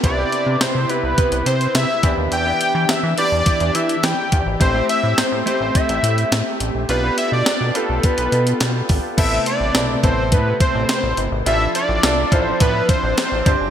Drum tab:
CC |----------------|----------------|----------------|----------------|
HH |x-x-x-x-xxxxx-x-|x-x-x-x-xxxxx-x-|x-x-x-x-xxxxx-x-|x-x-x-x-xxxxx-o-|
SD |----o-------o---|----o-------o---|----o-------o---|----o-------o---|
BD |o-------o-----o-|--------o-----o-|o-------o-------|--------o-----o-|

CC |x---------------|----------------|
HH |x-x-x-x-x-x-x-x-|x-x-x-x-x-x-x-x-|
SD |----o-------o---|----o-------o---|
BD |o-----o-o-o-----|------o-o-o---o-|